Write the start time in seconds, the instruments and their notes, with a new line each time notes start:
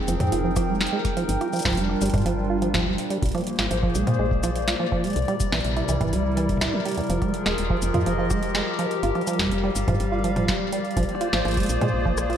Already playing: analog synth pad F3 C4 D#4 G#4 A#4 C5 G5
0.08 fm bass F1, acid bass F3, closed hi-hat, cabasa
0.20 fm bass F2, closed hi-hat, mid tom
0.32 fm bass F1, acid bass F4, closed hi-hat
0.44 acid bass F3
0.56 acid bass F3, kick, cross-stick, closed hi-hat, cabasa
0.68 acid bass G#3
0.81 snare, closed hi-hat
0.87 closed hi-hat
0.93 acid bass G#3
1.05 kick, cross-stick, closed hi-hat
1.17 acid bass F3, closed hi-hat
1.29 fm bass G1, analog synth pad G3, closed hi-hat
1.39 analog synth pad D4, acid bass F4, cross-stick, closed hi-hat
1.46 analog synth pad F4
1.53 acid bass F3, cabasa
1.56 closed hi-hat, cabasa
1.59 cabasa
1.62 fm bass F1, acid bass F3, kick, snare, closed hi-hat, cabasa
1.68 kick, closed hi-hat
1.70 kick, closed hi-hat
1.73 kick, closed hi-hat
1.75 fm bass F1, acid bass G3, closed hi-hat
1.77 closed hi-hat
1.89 cross-stick
2.01 fm bass G1, acid bass G3, closed hi-hat, cabasa
2.06 closed hi-hat
2.10 closed hi-hat
2.14 fm bass G2, kick, closed hi-hat, mid tom
2.18 closed hi-hat
2.22 fm bass G1, acid bass F3, closed hi-hat
2.26 closed hi-hat
2.50 acid bass F4
2.62 acid bass F3, closed hi-hat
2.74 acid bass F3, kick, snare, closed hi-hat, mid tom
2.78 kick
2.82 kick
2.86 acid bass G3, kick
2.90 kick
2.94 kick
2.98 closed hi-hat
3.10 acid bass G3, closed hi-hat
3.22 fm bass A#1, analog synth pad A#2 A#3, kick, closed hi-hat
3.26 closed hi-hat
3.29 analog synth pad C5, closed hi-hat
3.32 acid bass F3, cross-stick, closed hi-hat
3.35 closed hi-hat
3.38 closed hi-hat
3.41 closed hi-hat
3.44 closed hi-hat
3.47 closed hi-hat
3.53 closed hi-hat
3.56 analog synth pad G#4, cross-stick, snare, closed hi-hat
3.59 fm bass G#1, acid bass F4, closed hi-hat
3.71 fm bass G#1, acid bass F3, closed hi-hat
3.80 acid bass F3, analog synth pad D5, kick, cross-stick
3.95 fm bass A#1, acid bass G#3, closed hi-hat, cabasa
4.07 fm bass A#2, closed hi-hat, mid tom
4.19 fm bass A#1, acid bass G#3
4.31 kick
4.43 acid bass F3, cross-stick, closed hi-hat, cabasa
4.56 closed hi-hat
4.68 acid bass F4, snare, closed hi-hat
4.80 acid bass F3
4.92 acid bass F3, kick, cross-stick
5.04 acid bass G#3, closed hi-hat
5.07 closed hi-hat
5.10 closed hi-hat
5.13 fm bass C2, closed hi-hat
5.16 analog synth pad C3, closed hi-hat
5.22 closed hi-hat
5.25 analog synth pad G3, acid bass G3, cross-stick, closed hi-hat
5.28 analog synth pad E4, closed hi-hat
5.40 kick, closed hi-hat, cabasa
5.46 analog synth pad A#4
5.52 fm bass A#1, acid bass E3, cross-stick, snare, closed hi-hat
5.56 closed hi-hat
5.61 fm bass A#1, closed hi-hat
5.64 closed hi-hat
5.77 acid bass E4, cross-stick, closed hi-hat
5.89 fm bass C2, acid bass E3, closed hi-hat, cabasa
6.01 fm bass G1, acid bass E3, kick, closed hi-hat, mid tom
6.13 fm bass C2, acid bass G3, closed hi-hat
6.37 acid bass E3, closed hi-hat
6.49 kick, closed hi-hat, mid tom
6.57 acid bass E4, mid tom
6.61 snare, closed hi-hat
6.65 mid tom
6.73 acid bass E3
6.85 acid bass G3, closed hi-hat
6.88 closed hi-hat
6.91 closed hi-hat
6.95 acid bass E2, closed hi-hat
6.98 closed hi-hat
7.01 closed hi-hat
7.04 closed hi-hat
7.07 fm bass F1, acid bass F3, analog synth pad F3, closed hi-hat
7.10 closed hi-hat
7.19 acid bass G#3, analog synth pad F4 G#4, kick, cross-stick, closed hi-hat
7.34 closed hi-hat
7.39 analog synth pad G4
7.46 fm bass D#1, acid bass G#3, cross-stick, snare, closed hi-hat
7.58 fm bass D#1, closed hi-hat
7.70 acid bass F3, kick, cross-stick
7.82 fm bass F1, closed hi-hat, cabasa
7.87 analog synth pad D#5
7.94 fm bass F2, acid bass F4, closed hi-hat, mid tom
8.06 fm bass F1, acid bass F3, closed hi-hat
8.18 acid bass F3
8.31 acid bass G#3, kick, cross-stick, cabasa
8.43 closed hi-hat
8.55 acid bass G#3, snare, closed hi-hat
8.79 acid bass F3, cross-stick, closed hi-hat
8.91 closed hi-hat
9.03 fm bass G1, analog synth pad G3, acid bass F4, closed hi-hat
9.15 acid bass F3, cross-stick, closed hi-hat
9.21 closed hi-hat
9.27 acid bass F3, closed hi-hat, cabasa
9.33 closed hi-hat
9.38 fm bass F1, acid bass G3, analog synth pad F5, kick, snare, closed hi-hat
9.42 kick
9.44 kick
9.47 kick
9.49 fm bass F1, kick, closed hi-hat
9.57 analog synth pad D5
9.64 acid bass G3, cross-stick
9.76 fm bass G1, closed hi-hat, cabasa
9.88 fm bass G2, acid bass F3, kick, closed hi-hat, mid tom
10.00 fm bass G1, closed hi-hat
10.12 acid bass F4
10.24 acid bass F3, closed hi-hat
10.36 acid bass F3, closed hi-hat, mid tom
10.48 acid bass G3, kick, snare, closed hi-hat
10.72 acid bass G3, closed hi-hat
10.85 closed hi-hat
10.91 closed hi-hat
10.97 fm bass A#1, acid bass F3, analog synth pad A#3, kick, closed hi-hat
11.03 analog synth pad C5, closed hi-hat
11.08 analog synth pad F4, closed hi-hat
11.15 analog synth pad G#4, cross-stick
11.21 acid bass F4, closed hi-hat
11.33 fm bass G#1, acid bass F3, cross-stick, snare, closed hi-hat
11.45 fm bass G#1, acid bass F3, closed hi-hat
11.48 closed hi-hat
11.51 closed hi-hat
11.54 acid bass G#3, kick, cross-stick, closed hi-hat
11.57 closed hi-hat
11.60 closed hi-hat
11.63 closed hi-hat
11.66 fm bass A#1, closed hi-hat
11.69 closed hi-hat, cabasa
11.81 fm bass A#2, acid bass G#3, closed hi-hat, mid tom
11.94 fm bass A#1
12.06 acid bass F3, kick
12.18 cross-stick, cabasa
12.30 acid bass F4, closed hi-hat
12.33 closed hi-hat